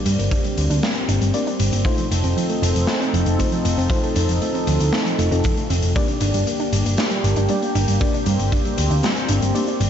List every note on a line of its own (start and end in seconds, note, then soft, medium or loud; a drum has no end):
0.00 1.81 G3 medium
0.00 1.31 A#3 medium
0.00 1.81 A#3 medium
0.00 5.92 C4 medium
0.00 1.31 D4 medium
0.00 1.31 G4 medium
0.00 1.31 D5 loud
0.06 0.15 G2 medium
0.06 0.15 G3 loud
0.06 closed hi-hat loud
0.19 0.28 G1 medium
0.19 0.31 A#3 medium
0.19 closed hi-hat medium
0.31 0.37 D4 loud
0.31 kick loud
0.31 closed hi-hat medium
0.44 0.53 G3 medium
0.44 closed hi-hat soft
0.57 0.67 D2 medium
0.57 0.66 A#3 medium
0.57 closed hi-hat medium
0.70 0.79 D2 medium
0.70 0.79 D4 loud
0.70 closed hi-hat medium
0.83 0.92 G3 loud
0.83 snare loud
0.83 closed hi-hat medium
0.95 1.08 A#3 medium
0.95 closed hi-hat soft
1.08 1.18 G1 medium
1.08 1.14 D4 loud
1.08 closed hi-hat loud
1.21 1.31 G1 medium
1.21 1.30 G3 medium
1.21 closed hi-hat medium
1.34 1.82 A#3 medium
1.34 1.43 A#3 medium
1.34 1.82 D4 medium
1.34 1.82 G4 medium
1.34 1.82 D5 medium
1.34 closed hi-hat medium
1.47 1.56 D4 loud
1.47 closed hi-hat soft
1.59 1.69 G1 medium
1.59 1.68 G3 loud
1.59 closed hi-hat medium
1.72 1.82 G1 medium
1.72 1.85 A#3 medium
1.72 closed hi-hat medium
1.85 5.92 F3 medium
1.85 3.36 A3 medium
1.85 1.91 C4 loud
1.85 3.36 D#4 medium
1.85 5.92 D#4 medium
1.85 3.36 F4 medium
1.85 5.92 A4 medium
1.85 3.36 C5 loud
1.85 kick loud
1.85 closed hi-hat medium
1.98 2.07 F3 medium
1.98 closed hi-hat soft
2.11 2.20 F1 medium
2.11 2.20 A3 medium
2.11 closed hi-hat loud
2.24 2.33 F1 medium
2.24 2.33 C4 medium
2.24 closed hi-hat medium
2.37 2.45 F3 loud
2.37 closed hi-hat medium
2.49 2.62 A3 medium
2.49 closed hi-hat soft
2.62 2.72 F1 medium
2.62 2.67 C4 loud
2.62 closed hi-hat loud
2.75 2.85 F1 medium
2.75 2.84 F3 medium
2.75 closed hi-hat medium
2.87 2.97 A3 medium
2.87 snare loud
2.87 closed hi-hat medium
3.01 3.09 C4 loud
3.01 closed hi-hat soft
3.13 3.23 F1 medium
3.13 3.22 F3 loud
3.13 closed hi-hat medium
3.26 3.36 F1 medium
3.26 3.39 A3 medium
3.26 closed hi-hat medium
3.39 3.87 A3 medium
3.39 3.44 C4 loud
3.39 3.87 D#4 medium
3.39 3.87 F4 medium
3.39 3.87 C5 medium
3.39 kick medium
3.39 closed hi-hat medium
3.52 3.61 F3 medium
3.52 closed hi-hat soft
3.65 3.74 F1 medium
3.65 3.74 A3 medium
3.65 closed hi-hat loud
3.78 3.87 F1 medium
3.78 3.86 C4 loud
3.78 closed hi-hat medium
3.90 3.99 F3 loud
3.90 5.16 A3 medium
3.90 5.16 D#4 medium
3.90 5.16 F4 medium
3.90 5.16 C5 loud
3.90 kick loud
3.90 closed hi-hat medium
4.03 4.15 A3 medium
4.03 closed hi-hat soft
4.16 4.26 F2 medium
4.16 4.21 C4 loud
4.16 closed hi-hat medium
4.29 4.38 F1 medium
4.29 4.38 F3 medium
4.29 closed hi-hat medium
4.42 4.50 A3 medium
4.42 closed hi-hat medium
4.54 4.63 C4 loud
4.54 closed hi-hat soft
4.67 4.77 D2 medium
4.67 4.76 F3 loud
4.67 closed hi-hat medium
4.80 4.90 D2 medium
4.80 4.92 A3 medium
4.80 closed hi-hat medium
4.93 4.98 C4 loud
4.93 snare loud
4.93 closed hi-hat medium
5.06 5.15 F3 medium
5.06 closed hi-hat soft
5.19 5.28 F1 medium
5.19 5.27 A3 medium
5.19 5.28 A3 medium
5.19 5.28 D#4 medium
5.19 5.28 F4 medium
5.19 5.28 A4 medium
5.19 closed hi-hat medium
5.31 5.41 F1 medium
5.31 5.93 A3 loud
5.31 5.40 C4 loud
5.31 5.93 D#4 medium
5.31 5.93 F4 medium
5.31 5.93 A4 loud
5.31 closed hi-hat medium
5.44 5.53 F3 loud
5.44 kick loud
5.44 closed hi-hat medium
5.57 5.69 A3 medium
5.57 closed hi-hat soft
5.70 5.79 F1 medium
5.70 5.75 C4 loud
5.70 closed hi-hat medium
5.82 5.92 F1 medium
5.82 5.92 F3 medium
5.82 closed hi-hat medium
5.96 6.04 G3 loud
5.96 7.46 A#3 medium
5.96 9.90 A#3 medium
5.96 7.46 D4 medium
5.96 7.99 D4 medium
5.96 7.46 G4 medium
5.96 9.90 G4 medium
5.96 7.46 D5 loud
5.96 kick loud
5.96 closed hi-hat medium
6.08 6.21 A#3 medium
6.08 closed hi-hat soft
6.21 6.31 G1 medium
6.21 6.27 D4 loud
6.21 closed hi-hat medium
6.34 6.43 G1 medium
6.34 6.43 G3 medium
6.34 closed hi-hat medium
6.47 6.56 A#3 medium
6.47 closed hi-hat medium
6.59 6.68 D4 loud
6.59 closed hi-hat soft
6.72 6.82 G1 medium
6.72 6.81 G3 loud
6.72 closed hi-hat medium
6.85 6.95 G1 medium
6.85 6.98 A#3 medium
6.85 closed hi-hat medium
6.97 7.03 D4 loud
6.97 snare loud
6.97 closed hi-hat medium
7.10 7.20 G3 medium
7.10 closed hi-hat soft
7.24 7.33 G1 medium
7.24 7.33 A#3 medium
7.24 closed hi-hat medium
7.36 7.46 G1 medium
7.36 7.45 D4 loud
7.36 closed hi-hat medium
7.48 7.58 G3 loud
7.48 7.98 A#3 medium
7.48 7.98 D4 medium
7.48 7.98 G4 medium
7.48 7.98 D5 medium
7.48 closed hi-hat medium
7.62 7.75 A#3 medium
7.62 closed hi-hat soft
7.75 7.85 G1 medium
7.75 7.80 D4 loud
7.75 closed hi-hat medium
7.88 7.97 G1 medium
7.88 7.97 G3 medium
7.88 closed hi-hat medium
8.01 8.10 A#3 medium
8.01 9.52 A#3 medium
8.01 9.90 C4 medium
8.01 9.52 D4 medium
8.01 9.52 G4 medium
8.01 9.52 D5 loud
8.01 kick loud
8.01 closed hi-hat medium
8.14 8.22 D4 loud
8.14 closed hi-hat soft
8.26 8.36 G2 medium
8.26 8.35 G3 loud
8.26 closed hi-hat medium
8.39 8.49 G1 medium
8.39 8.51 A#3 medium
8.39 closed hi-hat medium
8.52 8.57 D4 loud
8.52 kick loud
8.52 closed hi-hat medium
8.65 8.74 G3 medium
8.65 closed hi-hat soft
8.78 8.87 D2 medium
8.78 8.86 A#3 medium
8.78 closed hi-hat medium
8.91 9.00 D2 medium
8.91 8.99 D4 loud
8.91 closed hi-hat medium
9.03 9.12 G3 loud
9.03 snare loud
9.03 closed hi-hat medium
9.16 9.28 A#3 medium
9.16 closed hi-hat soft
9.28 9.38 G1 medium
9.28 9.34 D4 loud
9.28 closed hi-hat loud
9.42 9.51 G1 medium
9.42 9.51 G3 medium
9.42 closed hi-hat medium
9.55 9.90 A#3 medium
9.55 9.63 A#3 medium
9.55 9.90 D4 medium
9.55 9.90 G4 medium
9.55 9.90 D5 medium
9.55 closed hi-hat medium
9.67 9.76 D4 loud
9.67 closed hi-hat soft
9.80 9.90 G1 medium
9.80 9.89 G3 loud
9.80 closed hi-hat medium